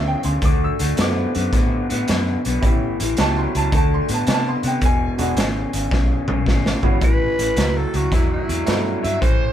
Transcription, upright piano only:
0.08 0.25 G5 medium
0.25 0.42 C6 medium
0.45 0.62 D6 loud
0.64 0.98 E6 medium
0.97 1.82 A3 medium
0.97 1.83 C4 medium
0.97 1.83 E4 medium
0.97 1.83 F#4 medium
0.97 2.06 D6 loud
2.61 2.95 B3 medium
2.61 2.96 C#4 medium
2.61 2.95 E4 medium
2.61 2.96 G4 medium
3.18 3.73 B3 medium
3.18 3.73 C#4 medium
3.18 3.73 E4 medium
3.18 3.73 G4 medium
3.18 3.37 A5 loud
3.38 3.55 C6 medium
3.57 3.74 A5 loud
3.76 3.92 A5 medium
3.94 4.11 C6 loud
4.14 4.30 A5 medium
4.28 4.32 G#5 medium
4.32 4.48 A5 loud
4.48 4.65 C6 loud
4.67 4.84 G5 medium
4.86 5.91 G#5 loud
5.18 5.35 G#3 medium
5.18 5.35 B3 medium
5.18 5.35 D4 medium
5.18 5.36 F#4 medium
6.83 7.00 A2 medium
6.83 7.00 G3 medium
6.83 7.00 B3 medium
6.83 7.00 C#4 medium
6.83 7.00 F#4 medium
8.65 9.00 G3 medium
8.65 9.00 A3 medium
8.65 9.00 B3 medium
8.65 9.00 C#4 medium
8.65 9.00 E4 medium

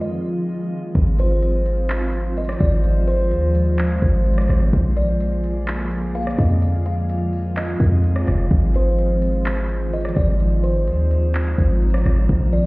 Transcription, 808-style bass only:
0.95 2.57 G#1 loud
2.61 3.33 G#1 loud
3.31 3.99 D#2 loud
4.02 4.48 G#1 loud
4.49 4.72 G#1 loud
4.73 6.35 A#1 loud
6.39 7.76 F2 loud
7.80 8.25 F2 loud
8.28 8.50 F1 loud
8.51 10.12 G#1 loud
10.17 10.89 G#1 loud
10.88 11.55 D#2 loud
11.58 12.04 G#1 loud
12.06 12.28 G#1 loud
12.29 12.66 A#1 loud

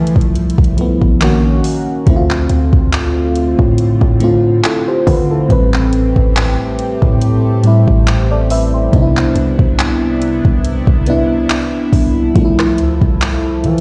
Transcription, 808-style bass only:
0.00 0.15 E3 loud
0.16 0.57 C2 medium
0.58 1.00 C2 loud
1.02 1.62 A#1 loud
2.07 2.48 D2 loud
2.50 2.72 D2 loud
2.73 3.55 D2 loud
3.59 4.00 A2 medium
4.01 4.61 A2 loud
5.07 5.48 D3 loud
5.50 6.13 A1 loud
6.16 6.57 A1 loud
7.02 7.84 A2 loud
7.87 8.89 A1 loud
8.93 9.34 C2 loud
9.36 9.58 C2 loud
9.59 10.41 C2 loud
10.45 10.86 C2 medium
10.87 11.47 C2 loud
11.93 12.34 C2 loud
12.36 12.79 C2 loud
12.78 13.00 D2 loud
13.02 13.65 C2 loud
13.64 13.80 E3 loud

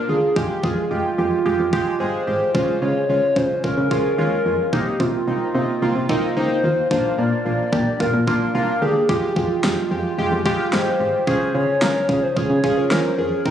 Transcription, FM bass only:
0.09 0.20 D2 medium
0.36 0.47 F1 loud
0.64 0.75 F2 medium
0.91 1.02 F1 loud
1.18 1.29 F2 medium
1.46 1.57 F1 loud
1.59 1.70 F2 loud
1.73 1.84 F1 loud
2.00 2.11 G1 medium
2.27 2.38 G#1 medium
2.55 2.66 C#2 loud
2.82 2.93 C#3 medium
3.09 3.20 C#2 medium
3.36 3.47 C#3 medium
3.64 3.75 C#2 loud
3.77 3.88 C#3 loud
3.91 4.02 C#2 loud
4.18 4.29 D#2 medium
4.46 4.56 F2 medium
4.73 4.84 C2 loud
5.00 5.11 C3 loud
5.27 5.38 C2 loud
5.55 5.66 C3 loud
5.82 5.93 C2 loud
5.96 6.07 C3 medium
6.09 6.20 C2 loud
6.36 6.47 C#2 medium
6.64 6.75 D#2 medium
6.91 7.02 A#1 loud
7.18 7.29 A#2 loud
7.46 7.57 A#1 medium
7.73 7.84 A#2 loud
8.00 8.11 A#1 loud
8.14 8.25 A#2 loud
8.27 8.38 A#1 loud
8.55 8.66 C2 medium
8.82 8.93 D2 medium
9.09 9.20 F1 loud
9.36 9.47 F2 medium
9.64 9.75 F1 loud
9.91 10.02 F2 medium
10.18 10.29 F1 loud
10.32 10.43 F2 loud
10.46 10.57 F1 loud
10.73 10.84 G1 medium
11.00 11.11 G#1 medium
11.27 11.38 C#2 loud
11.55 11.66 C#3 loud
11.82 11.93 C#2 loud
12.09 12.20 C#3 medium
12.37 12.47 C#2 loud
12.50 12.61 C#3 loud
12.64 12.75 C#2 loud
12.91 13.02 D#2 medium
13.18 13.29 F2 medium
13.46 13.51 C2 loud

